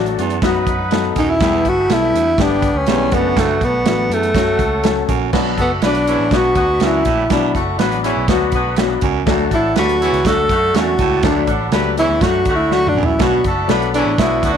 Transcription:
Already playing: A1 F#3 A3 D4 F#4 A4 D5 F#5 A5
0.06 closed hi-hat
0.19 E2 F#2, closed hi-hat
0.30 closed hi-hat
0.42 F#2 F#3 B3 D#4 F#4 B4 D#5 B5, kick, snare, closed hi-hat
0.67 F#2, kick, closed hi-hat
0.91 F#3 B3 D#4 A4, snare, closed hi-hat
1.16 D#1 F#2 D#4, kick, snare, closed hi-hat
1.30 E4
1.40 E1 E2 E3 G3 B3 E4 G4 A4 E5 G5, kick, snare, closed hi-hat
1.65 G1 F#4, kick, closed hi-hat
1.90 B1 G3 B3 E4 A4, snare, closed hi-hat
2.13 D2 E2, closed hi-hat
2.38 G1 D3 G3 B3 D4 G4 B4, kick, snare, closed hi-hat
2.62 kick, closed hi-hat
2.75 D2 C#4
2.87 B1 E2 G3 B3 D4 G4, snare, closed hi-hat
3.11 F#1 F#2 D3 F#3 A3 B3 D4 F#4 F#5 A5, kick, snare, closed hi-hat
3.36 F#1 D2 A3, kick, snare, closed hi-hat
3.61 B1 B3, kick, closed hi-hat
3.85 A1 F#3 A3 D4 F#4, snare, closed hi-hat
4.09 E2 F#2, closed hi-hat
4.13 A3
4.23 closed hi-hat
4.33 F#2 F#3 A3 C#4 F#4 A4 C#5 F#5, kick, snare, closed hi-hat
4.59 C#2, kick, closed hi-hat
4.83 F#3 A3 C#4 A4, snare, closed hi-hat
5.09 A#1 F#2, kick, closed hi-hat
5.32 B1 B2 F#3 B3 D4 F#4 D5 F#5 B5, kick, snare, crash
5.57 F#1 A3 B3 F#4 A4, kick, closed hi-hat
5.82 B1 F#3 B3 D4 F#4 B4, snare, closed hi-hat
5.86 D4
5.95 closed hi-hat
6.07 E2 E3 C#4 E4, closed hi-hat
6.19 A1
6.31 B1 D3 F#3 B3 D4 F#4, kick, snare, closed hi-hat
6.36 F#4
6.55 D2 D3 B3 F#4, kick, closed hi-hat
6.80 C#2 F#2 F#3 B3 D4 F#4, snare, closed hi-hat
6.86 E4
7.05 A#1 A2, kick, snare, closed hi-hat
7.30 B1 B2 F#3 B3 D4 E4, kick, snare, closed hi-hat
7.34 D4
7.54 F#1 A3 F#4 A4, kick, closed hi-hat
7.77 A1 F#3 B3 D4 F#4 B4, snare, closed hi-hat
7.92 closed hi-hat
8.03 E2 E3 C#4 E4, closed hi-hat
8.17 B1
8.28 D2 D3 F#3 B3 D4 F#4, kick, snare, closed hi-hat
8.52 B1 D3 B3 F#4, kick, closed hi-hat
8.77 F#3 B3 D4 F#4, snare, closed hi-hat
9.01 C#2 F#2, kick, closed hi-hat
9.26 D2 F#3 A3 D4 F#4 D5 A5, kick, snare, closed hi-hat
9.51 A1 F#3 D4 E4 A4, kick, closed hi-hat
9.76 D2 F#3 A3 B3 D4 F#4 G4 A4 B4, snare, closed hi-hat
9.89 closed hi-hat
10.01 E2 E3 C#4 E4, closed hi-hat
10.13 C#2, closed hi-hat
10.25 D2 D3 F#3 A3 D4 F#4 A4, kick, snare, closed hi-hat
10.49 F#2 D3 A3 F#4, kick, closed hi-hat
10.74 E2 F#2 F#3 A3 D4 F#4, snare, closed hi-hat
10.99 C#2 A2, kick, closed hi-hat
11.23 D2 F#3 A3 D4 A4 B5, kick, snare, closed hi-hat
11.47 A1 F#3 D4 A4, kick, closed hi-hat
11.72 C#2 F#3 A3 B3 D4 G4 A4 B4, snare, closed hi-hat
11.97 E2 E3 C#4 E4, closed hi-hat
12.09 D2
12.21 F#2 D3 F#3 A3 D4 F#4, kick, snare, closed hi-hat
12.45 D2 D3 A3 F#4, kick, closed hi-hat
12.56 E4
12.71 F#3 A3 D4 F#4, snare
12.87 D4, mid tom
12.95 A#1 F#2
13.03 E4, floor tom
13.19 B1 B2 F#3 B3 D4 F#4, kick, snare, closed hi-hat
13.44 F#1 A3 F#4 A4, kick, closed hi-hat
13.68 B1 F#3 B3 D4 A4 B4, snare, closed hi-hat
13.82 closed hi-hat
13.94 E2 E3 C#4 D4 E4, closed hi-hat
14.06 A1
14.18 B1 D3 F#3 B3 D4 E4 F#4, kick, snare, closed hi-hat
14.43 D2 D3 B3 F#4, kick, closed hi-hat
14.54 D4

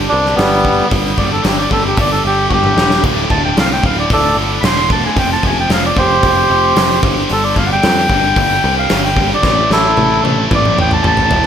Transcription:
Already playing: D3 G3
0.08 G2 D3 G3 D4
0.13 C2
0.26 snare
0.35 G1 G2 D3 G3 B3, snare, open hi-hat
0.40 G3
0.64 G2 D3 G3, kick
0.89 G1 G2 D3 G3, kick, open hi-hat
1.17 G1 G2 D3 G3 D5, kick
1.32 A4
1.42 G1 G2 D3 G3, snare, open hi-hat
1.47 G4
1.58 D5
1.70 G1 G2 D3 G3 A4, kick
1.88 G4
1.97 G1 G2 D3 G3 D5, kick, open hi-hat
2.11 A4
2.24 G1 G2 D3 G3 G4
2.49 G1 G2 D3 G3 F#4, kick
2.53 G4
2.64 mid tom
2.77 E1 G2 D3 G3, snare
2.90 snare
3.03 D1 D2 A2 D3, kick, crash
3.30 D1 D2 A2 D3 A5, kick
3.45 G5
3.57 C2 D2 A2 D3 F5, snare, open hi-hat
3.73 G5
3.83 D1 D2 A2 D3 F5, kick
4.00 D5
4.10 D1 D2 A2 D3 A4 D5, kick, open hi-hat
4.35 G1 D2 A2 D3
4.61 E1 D2 B5, snare, open hi-hat
4.65 A2 D3 C6
4.90 D2 A2 D3 A5, kick
5.06 G#5
5.16 F1 F2 C3 F3 G5, kick, open hi-hat
5.33 A5
5.43 F1 F2 C3 F3 G#5, kick
5.60 G5
5.69 F1 F2 C3 F3, snare, open hi-hat
5.73 F5
5.86 D5
5.96 F1 F2 C3 F3 G4 C5, kick
6.22 F1 F2 C3 F3, kick, open hi-hat
6.49 F1 F2 C3 F3
6.75 F1 F2 C3 F3, snare, open hi-hat
7.02 G1 G2 D3 G3, kick
7.29 G1 G2 D3 G3, open hi-hat
7.33 A4
7.44 D5
7.56 G1 G2 D3 G3 F5, kick
7.67 F#5
7.73 G5
7.83 F2 G2 D3 G3, snare, open hi-hat
8.09 G1 G2 D3 G3, kick
8.36 G1 G2 D3 G3, kick, open hi-hat
8.64 C2 G2 D3 G3
8.79 F5
8.89 G1 G2 D3 G3, snare, open hi-hat
9.05 G5
9.17 G2 D3 G3, kick
9.34 D5
9.43 A1 A2 E3 A3, kick, snare
9.70 A1 A2 E3 A3 E4 A4, snare
9.97 A1 A2 E3 A3, high tom
10.24 A1 A2 E3 A3, high tom
10.51 A1 A2 E3 A3, kick, mid tom
10.55 D5
10.65 mid tom
10.76 A1 A2 E3 A3, mid tom
10.81 G5
10.91 A5, mid tom
11.02 A1 A2 E3 A3 G#5, mid tom
11.07 A5
11.17 floor tom
11.31 E1 A2 E3 A3, floor tom

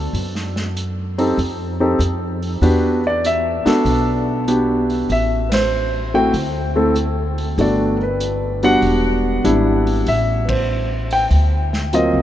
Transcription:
0.13 F#2, open hi-hat
0.35 snare
0.56 snare
0.77 closed hi-hat
1.18 C4 D#4 G4 A4, open hi-hat
1.38 F2, open hi-hat
1.80 C4 D#4 G4 A4
1.99 F2, closed hi-hat
2.42 open hi-hat
2.61 E2 B3 D4 F#4 G4 B4, open hi-hat
3.07 D5
3.24 E5, closed hi-hat
3.65 B3 D4 F#4 A4, muted upright bass stroke, snare, open hi-hat
3.85 B1, open hi-hat
4.48 B3 D4 F#4 G4, closed hi-hat
4.90 open hi-hat
5.09 A1 E5, open hi-hat
5.49 B4, snare, ride
5.54 C5
6.14 A3 C4 E4 F#4 G5
6.34 D2, open hi-hat
6.76 A3 C4 E4 A4
6.96 closed hi-hat
7.38 open hi-hat
7.58 G1 A3 B3 D4 F#4 D5, open hi-hat
7.98 A#4
8.03 B4
8.20 closed hi-hat
8.63 G3 B3 D4 F#4 F#5, open hi-hat
8.82 E1, open hi-hat
9.44 G#1 G3 B3 D4 E4, closed hi-hat
9.87 open hi-hat
10.06 A1 E5, open hi-hat
10.45 B4, kick, ride
10.50 C5
11.11 G5, open hi-hat
11.30 D2, open hi-hat
11.73 snare
11.93 F#3 A#3 C4 F4 D#5, closed hi-hat
12.13 C2

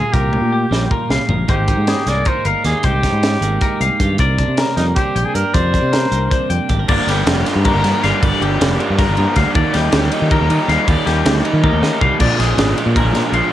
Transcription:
Already playing: A#2 G3 A#3 F4 G#4 A#4 F5
0.13 C2 A#2 F4 G4 A#4, kick, closed hi-hat
0.33 F4, high tom
0.41 A#2
0.52 G4
0.71 A#1 G3 A#3, snare
0.91 F4 A#4, kick
1.10 C2 F5, snare
1.29 A#1 A#2 A#4, floor tom
1.48 G#1 G#2 G#3 A#3 D#4 G4 C5, kick, closed hi-hat
1.68 D#4, kick, closed hi-hat
1.77 G#2
1.87 G#4, snare, closed hi-hat
2.06 C2 G#3 A#3 D5, snare, closed hi-hat
2.25 D#4 A#4 C5, kick, closed hi-hat
2.45 G1 A#4 F5, closed hi-hat
2.64 D#2 D#3 G4 G#4, snare, closed hi-hat
2.83 C2 G#2 D#4 G4 C5, kick, closed hi-hat
3.03 D#4, kick, snare, closed hi-hat
3.12 G#2
3.23 snare, closed hi-hat
3.41 G#1 G#3 A#3, closed hi-hat
3.61 D#4 A#4, kick, closed hi-hat
3.80 C2 F5, closed hi-hat
4.00 G2 D#3 G4, kick, closed hi-hat
4.18 C2 C3 A#4 D5, kick, closed hi-hat
4.38 D4, kick, closed hi-hat
4.48 C3
4.57 A#4, snare, closed hi-hat
4.76 F2 G3 A#3 D#4, snare, closed hi-hat
4.95 D4 G4 C5, kick, closed hi-hat
5.16 A#1 G5, closed hi-hat
5.25 G#4
5.34 G2 D4 A#4, closed hi-hat
5.54 F2 C3 A#4 C5 D5, kick, closed hi-hat
5.74 D4, kick, closed hi-hat
5.82 C3
5.93 A#4, snare, closed hi-hat
6.11 C2 G3 A#3, closed hi-hat
6.31 D4 C5, kick, closed hi-hat
6.50 F2 G5, closed hi-hat
6.69 G#1 G2 G4, kick, closed hi-hat
6.79 A#4
6.88 G1 G2 D3 G3 A#3 D4 F4 D5, kick, crash
6.92 A#4
7.07 G1 G3 A#3 D4 G4, snare, ride
7.26 F1 D3 G3 A#3 D4, snare, ride
7.46 G3 A#3 D4 F4, snare, ride
7.55 G2
7.64 G2 D3 G3 A#3 D4 G4 A#4, kick, ride
7.75 G1 A#4
7.84 G2 G3 A#3 D4, snare, ride
7.95 F4
8.03 G1 D3 G3 A#3 D4 F5, snare, ride
8.21 G1 G2 D3 G3 A#3 D4 D5, kick, ride
8.40 G1 G3 A#3 D4 G4, ride
8.59 F1 D3 G3 A#3 D4, snare, ride
8.79 G3 A#3 D4 F4, ride
8.90 G2
8.98 G2 D3 G3 A#3 D4 A#4, kick, snare, ride
9.09 G1
9.17 G2 G3 A#3 D4 F4, ride
9.36 D2 D3 G3 A#3 D4 F5, kick, snare, ride
9.54 D#2 D#3 G3 A#3 D#4 D5, kick, ride
9.73 D#2 G3 A#3 D#4 G4, snare, ride
9.92 D2 D#3 G3 A#3 D#4, snare, ride
10.12 G3 A#3 D#4, ride
10.22 D#3
10.30 D#3 G3 A#3 D#4 G4 A#4, kick, ride
10.41 D#2
10.50 D#3 G3 A#3 D#4, ride
10.68 D#2 D#3 G3 A#3 D#4 F5, snare, ride
10.87 D#2 D#3 G3 A#3 D#4 D5, kick, ride
11.06 D#2 G3 A#3 D#4 G4, snare, ride
11.25 D2 D#3 G3 A#3 D#4, snare, ride
11.44 G3 A#3 D#4, ride
11.53 D#3
11.63 D#3 G3 A#3 D#4 G4 A#4, kick, high tom
11.73 D#2
11.81 D#3 G3 A#3 D#4, snare
12.00 C2 D#3 G3 A#3 D#4 F5, kick
12.19 A#1 A#2 F3 G#3 D4 D5, kick, crash
12.38 A#1 F3 G#3 D4 G#4, snare, ride
12.58 G#1 A#2 F3 G#3 D4, snare, ride
12.77 F3 G#3 D4 F4, ride
12.86 A#2
12.95 A#2 F3 G#3 D4 G#4 A#4, kick, ride
13.05 A#1
13.13 A#2 F3 G#3 D4 F4, snare, ride
13.32 A#1 A#2 F3 G#3 D4 F5, ride

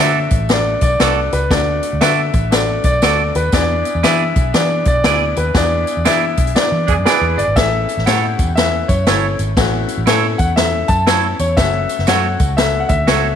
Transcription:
0.00 D3 A3 D4 F#4 A4 D5 E5
0.31 A1, kick, closed hi-hat, tambourine
0.49 A3 D4 F#4 A4 D5, snare, closed hi-hat, tambourine
0.81 B1 D5, kick, closed hi-hat, tambourine
1.00 C2 A3 D4 F#4 A4 B4 D5, snare, closed hi-hat, tambourine
1.32 C#2 B4, closed hi-hat, tambourine
1.51 D2 A3 D4 F#4 A4 D5, kick, snare, closed hi-hat, tambourine
1.83 closed hi-hat, tambourine
1.93 D2
2.01 D3 A3 D4 F#4 A4 B4 D5 E5, snare, closed hi-hat, tambourine
2.33 A1, kick, closed hi-hat, tambourine
2.51 A3 D4 F#4 A4 D5, snare, closed hi-hat, tambourine
2.84 B1 D5, kick, closed hi-hat, tambourine
3.02 D2 A3 D4 F#4 A4 D5, snare, closed hi-hat, tambourine
3.35 D#2 B4, closed hi-hat, tambourine
3.52 E2 B3 D4 E4 G#4 D5, kick, snare, closed hi-hat, tambourine
3.85 closed hi-hat, tambourine
3.95 E2
4.03 E3 B3 D4 E4 G#4 D5 E5, snare, closed hi-hat, tambourine
4.36 B1, kick, closed hi-hat, tambourine
4.54 E3 B3 D4 E4 G#4 D5, snare, closed hi-hat, tambourine
4.85 B1 D5, kick, closed hi-hat, tambourine
5.04 D2 B3 D4 E4 G#4 D5, snare, closed hi-hat, tambourine
5.36 D#2 B4, closed hi-hat, tambourine
5.54 E2 B3 D4 E4 G#4 D5, kick, snare, closed hi-hat, tambourine
5.87 closed hi-hat, tambourine
5.97 E2
6.05 E3 B3 D4 E4 G#4 D5 E5, snare, closed hi-hat, tambourine
6.37 B1, kick, closed hi-hat, tambourine
6.47 closed hi-hat
6.55 B3 D4 E4 G#4 D5, snare, closed hi-hat, tambourine
6.72 E3
6.87 E2 E3 D4 G#4, kick, closed hi-hat, tambourine
6.97 F#2
7.05 E3 B3 D4 E4 G#4 B4 D5, snare, closed hi-hat, tambourine
7.21 E2
7.38 G1 D5, closed hi-hat, tambourine
7.47 G#1
7.56 A1 A3 C#4 E4 A4 E5, kick, snare, closed hi-hat, tambourine
7.89 closed hi-hat, tambourine
7.97 A1, snare
8.06 A2 A3 C#4 E4 G4 A4 C#5 F#5, snare, closed hi-hat, tambourine
8.39 E2, kick, closed hi-hat, tambourine
8.55 A3 C#4 E4 B4 E5, snare, closed hi-hat, tambourine
8.88 F#2 C#5, kick, closed hi-hat, tambourine
9.07 G1 A3 C#4 E4 A4 C#5, snare, closed hi-hat, tambourine
9.39 G#1, closed hi-hat, tambourine
9.57 A1 A3 C#4 E4 F#4, kick, snare, closed hi-hat, tambourine
9.88 closed hi-hat, tambourine
9.97 A1
10.06 A2 A3 C#4 E4 A4 C#5, snare, closed hi-hat, tambourine
10.38 E2 F#5, kick, closed hi-hat, tambourine
10.56 A3 C#4 E4 A4 E5, snare, closed hi-hat, tambourine
10.88 F#2 A5, kick, closed hi-hat, tambourine
11.06 A3 C#4 E4 A4 C#5, snare, closed hi-hat, tambourine
11.39 E2 C#5, closed hi-hat, tambourine
11.57 F#1 A3 C#4 F#4 A4 E5, kick, snare, closed hi-hat, tambourine
11.89 closed hi-hat, tambourine
11.99 F#1, snare
12.07 F#2 A3 C#4 F#4 A4 C#5 F#5, snare, closed hi-hat, tambourine
12.39 C#2, kick, closed hi-hat, tambourine
12.57 A3 C#4 F#4 A4 E5, snare, closed hi-hat, tambourine
12.80 F#5
12.89 D2 E5, kick, closed hi-hat, tambourine
13.07 C#2 A3 C#4 F#4 A4 C#5, snare, closed hi-hat, tambourine

